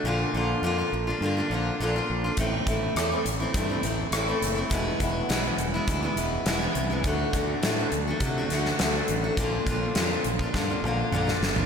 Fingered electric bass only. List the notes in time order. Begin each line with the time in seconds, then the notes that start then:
0.04 A#1
0.34 A#1
0.62 F2
0.92 A#1
1.21 G2
1.50 A#1
1.80 A#1
2.10 A#1
2.38 A1
2.67 A1
2.96 E2
3.25 A1
3.55 G2
3.83 A1
4.12 A1
4.42 F#1
4.70 E1
5.01 E1
5.30 B1
5.58 E1
5.88 D2
6.16 E1
6.46 E1
6.75 C2
7.04 D2
7.34 D2
7.64 A2
7.92 D2
8.20 C3
8.51 D2
8.80 D2
9.09 A1
9.37 A#1
9.66 A#1
9.96 F2
10.25 A#1
10.54 G2
10.82 A#1
11.12 A#1
11.40 G1